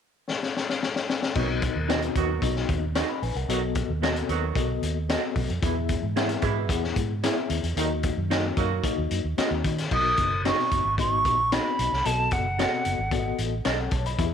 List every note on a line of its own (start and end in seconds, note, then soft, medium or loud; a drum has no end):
0.29 snare medium
0.43 snare medium
0.57 snare medium
0.70 snare medium
0.83 snare medium
0.96 snare medium
1.10 snare loud
1.23 snare medium
1.35 1.68 B1 loud
1.35 2.12 B2 medium
1.35 1.47 D#3 medium
1.35 1.47 F#3 medium
1.35 1.76 B3 medium
1.35 1.47 B3 medium
1.35 1.77 D#4 medium
1.35 1.47 F#4 medium
1.35 1.77 F#4 medium
1.35 1.77 D#5 medium
1.35 kick loud
1.35 crash medium
1.62 kick medium
1.62 closed hi-hat medium
1.75 2.08 D#2 medium
1.88 2.30 B3 medium
1.88 2.00 D#4 medium
1.88 2.30 D#4 medium
1.88 2.00 F#4 medium
1.88 2.30 F#4 medium
1.88 2.00 B4 medium
1.88 1.95 D5 medium
1.88 2.01 D#5 medium
1.88 snare loud
1.88 closed hi-hat medium
1.96 2.33 D#5 medium
2.02 closed hi-hat soft
2.15 2.37 D#2 medium
2.15 2.54 D#3 medium
2.15 2.53 F#3 medium
2.15 2.53 B3 medium
2.15 2.53 F#4 medium
2.15 kick medium
2.15 closed hi-hat medium
2.42 2.64 B1 medium
2.42 2.83 B3 medium
2.42 2.83 D#4 medium
2.42 2.84 F#4 medium
2.42 2.84 D#5 medium
2.42 kick medium
2.42 closed hi-hat medium
2.56 snare soft
2.69 3.01 D#2 medium
2.69 kick medium
2.69 closed hi-hat medium
2.95 3.07 D#4 medium
2.95 3.07 F#4 medium
2.95 3.07 B4 medium
2.95 3.07 D#5 medium
2.95 3.08 C#6 medium
2.95 snare loud
2.95 closed hi-hat medium
3.09 3.22 D#5 medium
3.09 3.22 B5 medium
3.22 3.33 A#1 medium
3.22 3.35 B4 medium
3.22 3.35 G#5 medium
3.22 open hi-hat medium
3.35 3.46 C2 medium
3.35 3.61 A#4 medium
3.35 3.61 F#5 medium
3.35 closed hi-hat soft
3.49 3.81 B1 loud
3.49 4.25 B2 medium
3.49 3.60 D#3 medium
3.49 3.61 F#3 medium
3.49 3.60 B3 medium
3.49 3.90 B3 medium
3.49 3.90 F#4 medium
3.49 3.61 F#4 medium
3.49 3.90 A4 medium
3.49 3.90 D#5 medium
3.49 closed hi-hat medium
3.75 kick medium
3.75 closed hi-hat medium
3.89 4.21 D#2 medium
4.02 4.43 B3 medium
4.02 4.14 B3 medium
4.02 4.43 F#4 medium
4.02 4.14 F#4 medium
4.02 4.44 A4 medium
4.02 4.14 A4 medium
4.02 4.44 D#5 medium
4.02 4.14 D#5 medium
4.02 snare loud
4.02 closed hi-hat medium
4.16 closed hi-hat medium
4.29 4.51 D#2 medium
4.29 4.67 D#3 medium
4.29 4.67 F#3 medium
4.29 4.67 B3 medium
4.29 4.67 F#4 medium
4.29 closed hi-hat medium
4.55 4.77 B1 medium
4.55 4.97 B3 medium
4.55 4.97 F#4 medium
4.55 4.97 A4 medium
4.55 4.97 D#5 medium
4.55 kick medium
4.55 closed hi-hat medium
4.82 5.15 D#2 medium
4.82 closed hi-hat medium
5.09 5.50 B3 medium
5.09 5.21 B3 medium
5.09 5.50 F#4 medium
5.09 5.21 F#4 medium
5.09 5.50 A4 medium
5.09 5.21 A4 medium
5.09 5.50 D#5 medium
5.09 5.21 D#5 medium
5.09 snare loud
5.09 closed hi-hat medium
5.36 5.47 B1 medium
5.36 kick medium
5.36 open hi-hat medium
5.49 5.60 F2 medium
5.49 closed hi-hat soft
5.62 5.95 E2 loud
5.62 5.74 B2 medium
5.62 5.74 E3 medium
5.62 6.39 E3 medium
5.62 5.74 G#3 medium
5.62 6.04 B3 medium
5.62 6.04 E4 medium
5.62 5.74 E4 medium
5.62 6.04 G#4 medium
5.62 6.04 E5 medium
5.62 kick loud
5.62 closed hi-hat medium
5.89 kick medium
5.89 closed hi-hat medium
6.03 6.35 G#2 medium
6.16 6.57 B3 medium
6.16 6.28 E4 medium
6.16 6.58 E4 medium
6.16 6.23 G4 medium
6.16 6.28 G#4 medium
6.16 6.28 B4 medium
6.16 6.58 E5 medium
6.16 6.28 E5 loud
6.16 snare loud
6.16 closed hi-hat medium
6.23 6.61 G#4 medium
6.29 snare soft
6.29 closed hi-hat soft
6.41 6.69 G#2 medium
6.41 6.80 B2 medium
6.41 6.80 E3 medium
6.41 6.81 G#3 medium
6.41 6.80 E4 medium
6.41 kick medium
6.41 closed hi-hat medium
6.69 6.91 E2 medium
6.69 7.11 B3 medium
6.69 7.11 E4 medium
6.69 7.11 G#4 medium
6.69 7.11 F#5 medium
6.69 kick medium
6.69 closed hi-hat medium
6.84 snare soft
6.96 7.29 G#2 medium
6.96 kick medium
6.96 closed hi-hat medium
7.23 7.65 B3 medium
7.23 7.35 E4 medium
7.23 7.65 E4 medium
7.23 7.35 G#4 medium
7.23 7.65 G#4 medium
7.23 7.35 B4 medium
7.23 7.65 E5 medium
7.23 7.35 E5 medium
7.23 snare loud
7.23 closed hi-hat medium
7.50 7.61 D#2 medium
7.50 closed hi-hat medium
7.63 7.74 E2 medium
7.63 closed hi-hat soft
7.76 8.09 D#2 loud
7.76 7.88 A#2 medium
7.76 7.88 D#3 medium
7.76 8.54 D#3 medium
7.76 7.88 F#3 medium
7.76 8.18 A#3 medium
7.76 7.88 D#4 medium
7.76 8.18 D#4 medium
7.76 8.19 F#4 medium
7.76 8.19 D#5 medium
7.76 closed hi-hat medium
8.03 kick medium
8.03 closed hi-hat medium
8.17 8.50 F#2 medium
8.30 8.72 A#3 medium
8.30 8.42 D#4 medium
8.30 8.72 D#4 medium
8.30 8.42 F#4 medium
8.30 8.72 F#4 medium
8.30 8.42 A#4 medium
8.30 8.42 D#5 loud
8.30 8.72 D#5 medium
8.30 snare loud
8.30 closed hi-hat medium
8.57 8.79 F#2 medium
8.57 8.96 D#3 medium
8.57 8.96 F#3 medium
8.57 8.96 A#3 medium
8.57 8.96 F#4 medium
8.57 kick medium
8.57 closed hi-hat medium
8.84 9.25 A#3 medium
8.84 9.26 D#4 medium
8.84 9.26 F#4 medium
8.84 9.26 D#5 medium
8.84 kick medium
8.84 closed hi-hat medium
8.98 9.09 D#2 medium
9.11 9.22 F#2 medium
9.11 closed hi-hat medium
9.24 9.35 D#2 medium
9.37 9.79 A#3 medium
9.37 9.79 D#4 medium
9.37 9.49 D#4 medium
9.37 9.79 F#4 medium
9.37 9.49 F#4 medium
9.37 9.50 A#4 medium
9.37 9.79 D#5 medium
9.37 9.50 D#5 medium
9.37 muted fingered electric bass stroke soft
9.37 snare loud
9.37 closed hi-hat medium
9.51 9.62 D#2 medium
9.64 9.86 D#3 medium
9.64 kick medium
9.64 closed hi-hat medium
9.78 snare soft
9.78 closed hi-hat medium
9.91 10.13 B1 loud
9.91 10.68 B2 medium
9.91 10.33 B3 medium
9.91 10.33 D#4 medium
9.91 10.33 F#4 medium
9.91 10.33 D#5 medium
9.91 10.42 D#6 loud
9.91 kick loud
9.91 crash medium
10.17 10.50 F#1 medium
10.17 kick medium
10.17 closed hi-hat medium
10.45 10.86 B3 medium
10.45 10.56 D#4 medium
10.45 10.86 D#4 medium
10.45 10.56 F#4 medium
10.45 10.86 F#4 medium
10.45 10.57 B4 medium
10.45 10.87 D#5 medium
10.45 10.57 D#5 loud
10.45 10.96 C#6 medium
10.45 snare loud
10.45 closed hi-hat medium
10.59 snare soft
10.72 10.82 F#1 medium
10.72 kick medium
10.72 closed hi-hat medium
10.85 11.25 G#1 medium
10.98 11.40 B3 medium
10.98 11.40 D#4 medium
10.98 11.40 F#4 medium
10.98 11.40 D#5 medium
10.98 11.54 C#6 medium
10.98 kick medium
10.98 closed hi-hat medium
11.25 11.57 A#1 medium
11.25 kick medium
11.25 closed hi-hat medium
11.52 11.93 B3 medium
11.52 11.63 D#4 medium
11.52 11.93 D#4 medium
11.52 11.64 F#4 medium
11.52 11.93 F#4 medium
11.52 11.64 B4 medium
11.52 11.94 D#5 medium
11.52 11.64 D#5 medium
11.52 12.07 B5 medium
11.52 snare loud
11.52 closed hi-hat medium
11.79 11.90 B1 medium
11.79 closed hi-hat medium
11.92 12.03 C2 medium
11.92 snare soft
12.05 12.27 B1 loud
12.05 12.82 B2 medium
12.05 12.46 B3 medium
12.05 12.46 F#4 medium
12.05 12.47 A4 medium
12.05 12.47 D#5 medium
12.05 12.34 A5 medium
12.05 closed hi-hat medium
12.31 12.64 F#1 medium
12.31 13.39 F#5 medium
12.31 kick medium
12.31 closed hi-hat medium
12.59 12.70 B3 medium
12.59 13.00 B3 medium
12.59 12.70 F#4 medium
12.59 13.00 F#4 medium
12.59 13.00 A4 medium
12.59 12.70 A4 medium
12.59 12.66 C#5 medium
12.59 12.70 D#5 medium
12.59 snare loud
12.59 closed hi-hat medium
12.66 13.03 D#5 medium
12.85 12.97 F#1 medium
12.85 closed hi-hat medium
12.98 13.31 G#1 medium
13.11 13.53 B3 medium
13.11 13.53 F#4 medium
13.11 13.54 A4 medium
13.11 13.19 D5 medium
13.11 kick medium
13.11 closed hi-hat medium
13.19 13.57 D#5 medium
13.38 13.60 A1 medium
13.38 closed hi-hat medium
13.65 13.87 B1 medium
13.65 13.77 B3 medium
13.65 13.77 F#4 medium
13.65 13.79 F#4 medium
13.65 13.77 A4 medium
13.65 13.78 D#5 medium
13.65 13.77 D#5 medium
13.65 snare loud
13.65 closed hi-hat medium
13.79 13.92 A4 medium
13.79 13.92 F#5 medium
13.91 14.14 B1 medium
13.91 14.05 C#5 medium
13.91 14.05 A5 medium
13.91 kick loud
13.91 closed hi-hat medium
14.06 14.32 D#5 medium
14.06 14.31 B5 medium
14.06 closed hi-hat soft
14.18 14.34 E2 loud
14.18 14.34 E3 medium
14.18 14.34 B3 medium
14.18 14.34 E4 medium
14.18 14.25 G4 medium
14.18 14.34 E5 medium
14.18 kick loud
14.18 closed hi-hat medium
14.25 14.34 G#4 medium